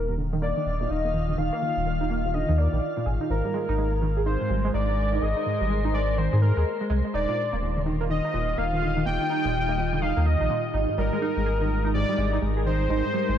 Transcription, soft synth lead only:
Already playing: A#4
0.42 D5
0.90 D#5
1.38 F5
2.34 D#5
2.58 D5
3.30 A#4
4.26 C5
4.74 D5
5.22 D#5
5.94 D5
6.18 C5
6.42 A#4
7.14 D5
8.10 D#5
8.58 F5
9.06 G5
10.02 F5
10.26 D#5
10.98 A#4
11.94 D5
12.66 C5

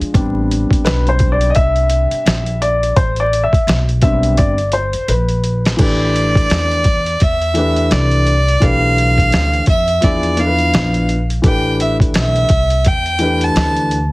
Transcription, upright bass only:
0.00 muted upright bass stroke
0.14 A1
0.70 muted upright bass stroke
0.85 B1
1.56 C2
2.11 muted upright bass stroke
2.26 A#1
2.97 A1
3.53 muted upright bass stroke
3.67 B1
4.39 G1
4.94 muted upright bass stroke
5.08 A#1
5.79 A1
6.50 E2
7.21 E2
7.91 C2
8.62 B1
9.32 D2
9.67 F2
10.04 E2
10.73 A#1
11.44 A1
12.14 B1
12.50 C2
12.86 E2
13.56 D2

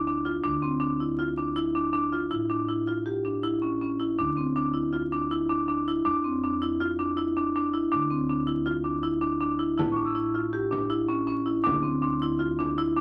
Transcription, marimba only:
0.07 D4
0.25 F4
0.44 D4
0.62 C4
0.80 D4
1.00 E4
1.19 F4
1.38 D4
1.56 E4
1.75 D4
1.93 D4
2.13 F4
2.31 E4
2.50 D4
2.68 E4
2.87 F4
3.06 G4
3.25 D4
3.43 E4
3.62 C#4
3.81 C#4
4.00 E4
4.18 D4
4.37 C4
4.56 D4
4.74 E4
4.93 F4
5.12 D4
5.31 E4
5.49 D4
5.68 D4
5.88 E4
6.05 D4
6.24 C4
6.44 D4
6.62 E4
6.80 F4
6.99 D4
7.17 E4
7.37 D4
7.56 D4
7.74 E4
7.92 D4
8.10 C4
8.29 D4
8.47 E4
8.66 F4
8.84 D4
9.03 E4
9.21 D4
9.41 D4
9.59 E4
9.78 E4
9.96 D4
10.15 E4
10.34 F4
10.53 G4
10.71 D4
10.90 E4
11.08 C#4
11.27 C#4
11.46 E4
11.64 D4
11.83 C4
12.02 D4
12.22 E4
12.39 F4
12.59 D4
12.78 E4
12.96 D4

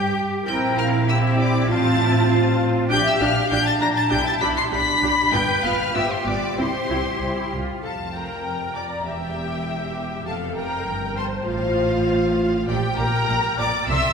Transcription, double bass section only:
Already playing: G2
0.48 A#1
1.69 A1
2.90 A#1
3.20 A#1
3.51 A#1
3.81 A#1
4.11 B1
4.42 B1
4.73 B1
5.03 B1
5.33 G1
5.63 G1
5.94 G1
6.26 G1
6.58 C2
6.90 C2
7.20 C2
7.53 C2
7.83 F1
9.06 E1
10.27 F1
10.87 G1
11.46 A1
12.68 A#1
12.98 A#1
13.28 A#1
13.58 A#1
13.88 C2

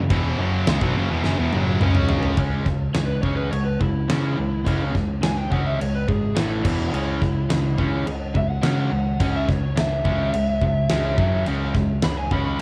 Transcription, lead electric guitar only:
2.94 C#5
3.06 B4
3.21 C#5
3.36 B4
3.50 C#5
3.65 B4
3.80 E4
5.23 G#5
5.37 G5
5.52 F#5
5.66 E5
5.79 C#5
5.95 B4
6.08 G#4
6.38 E4
8.37 E5
8.50 F#5
9.36 E5
9.49 C#5
9.79 E5
12.04 B5
12.18 G#5
12.32 B5
12.46 B5

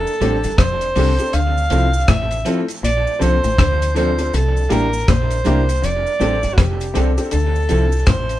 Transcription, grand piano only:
0.21 C4 D4 G4 A4
0.96 C4 D4 G4 A4
1.19 C4 D4 G4 A4
1.70 C4 E4 F4 A4
2.45 C4 E4 F4 A4
3.19 C4 D4 F4 A4
3.95 C4 D4 F4 A4
4.18 C4 D4 F4 A4
4.69 A#3 D4 E4 G4
5.45 A#3 D4 E4 G4
6.20 C4 D4 G4 A4
6.94 C4 D4 G4 A4
7.17 C4 D4 G4 A4
7.70 C4 E4 F4 A4

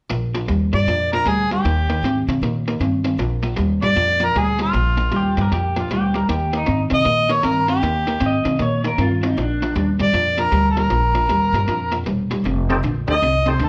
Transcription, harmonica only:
0.75 D5
1.13 A#4
1.28 G#4
1.52 G4
3.84 D5
4.24 A#4
4.38 G#4
4.62 F4
6.94 D#5
7.31 C#5
7.45 A#4
7.69 G4
10.03 D5
10.41 A#4
10.71 A4
10.78 A#4
13.10 D#5
13.49 C5
13.65 A4

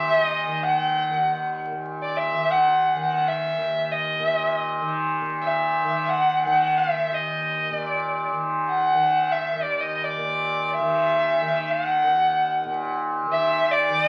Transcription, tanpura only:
Already playing: D#2 A#2 D#3
0.47 D#3
1.10 D#2
1.71 A#2
2.33 D#3
2.94 D#3
3.58 D#2
4.19 A#2
4.81 D#3
5.21 A#2
5.84 D#3
6.45 D#3
7.09 D#2
7.70 A#2
8.31 D#3
8.94 D#3
9.55 D#2
10.18 A#2
10.80 D#3
11.41 D#3
12.03 D#2
12.65 A#2
13.26 D#3
13.89 D#3

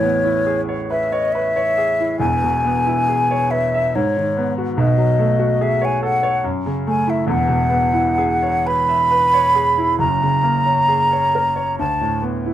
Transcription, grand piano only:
Already playing: A1 A2 E3
0.03 B3
0.25 E4
0.46 G#4
0.69 C#5
0.90 B4
1.12 C#5
1.35 B4
1.56 C#5
1.78 G#4
2.00 E4
2.20 E1 E2
2.43 B2
2.64 B3
2.86 E4
3.08 G#4
3.31 C#5
3.51 B4
3.74 E5
3.95 G#2
4.17 D#3
4.37 B3
4.58 F#4
4.77 B1 B2
4.98 F#3
5.19 A3
5.39 F#4
5.61 G#4
5.82 C#5
6.03 A4
6.23 C#5
6.44 F#2
6.66 C#3
6.87 A3
7.07 E4
7.27 E1 E2
7.49 B2
7.70 B3
7.94 E4
8.18 G#4
8.42 C#5
8.66 B4
8.89 E5
9.11 B4
9.33 C#5
9.55 G#4
9.78 E4
9.99 F#1 F#2
10.23 C#3
10.43 A#3
10.65 C#4
10.88 G#4
11.12 C#5
11.35 A#4
11.56 C#5
11.79 D2
12.01 A2
12.22 B3
12.46 E4

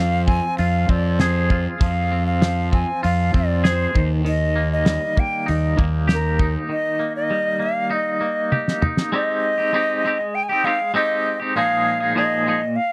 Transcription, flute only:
Already playing: F5
0.26 G#5
0.58 F5
0.90 D5
1.19 C5
1.82 F5
2.26 F5
2.74 G#5
3.04 F5
3.37 D5
3.67 C5
4.28 D#5
4.73 D#5
5.20 G5
5.49 D#5
6.13 A#4
6.72 D#5
7.16 D#5
7.63 F5
7.93 D#5
9.14 D#5
10.35 G5
10.43 G#5
10.49 G5
10.65 F5
10.96 D#5
11.56 F5
12.17 D#5
12.76 F5

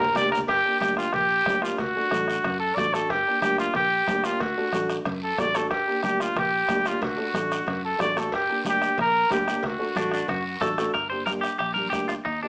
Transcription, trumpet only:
0.00 A#4
0.17 D5
0.32 A#4
0.48 G4
0.81 G4
0.98 F4
1.14 G4
1.62 F4
1.79 F#4
2.60 A4
2.76 D5
2.94 A4
3.11 G4
3.42 G4
3.59 F4
3.76 G4
4.24 F4
4.41 F#4
5.24 A4
5.40 D5
5.56 A4
5.70 G4
6.04 G4
6.21 F4
6.39 G4
6.88 F4
7.04 F#4
7.85 A4
8.01 D5
8.19 A4
8.35 G4
8.69 G4
9.01 A#4
9.33 G4
9.66 F#4

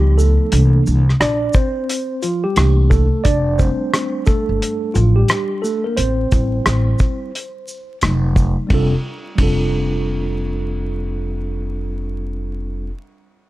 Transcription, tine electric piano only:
Already playing: F3 G3 B3 D#4 G4
0.18 A3 A4
0.52 E3 A#3 D4
1.20 D4 D5
1.55 C4 C5
2.23 F3 F4
2.44 G3 G4
2.56 E3 A3 A#3 D4
2.90 A3 A4
3.24 D4 D5
3.59 G3 A3 C4 D4 C5
4.26 A3 A4
4.94 F3 F4
5.16 G3 G4
5.62 A3 A4
5.84 A#3 A#4
5.97 C4 C5
6.31 G3 C4 E4
8.02 F#3 A3 D#4
8.67 G3 C4 D4
8.73 F4 A4
9.36 G3 C4 D4
9.41 F4 A4

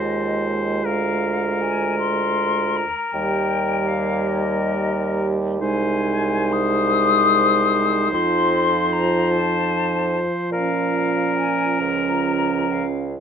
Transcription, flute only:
Already playing: D#5
0.84 F5
1.62 G#5
1.99 C6
2.77 A#5
3.13 G5
3.88 F5
4.27 D#5
5.60 G#5
6.53 D#6
8.13 C6
8.93 A#5
9.31 A5
10.51 F5
11.37 G#5
11.80 A#5
12.72 F5

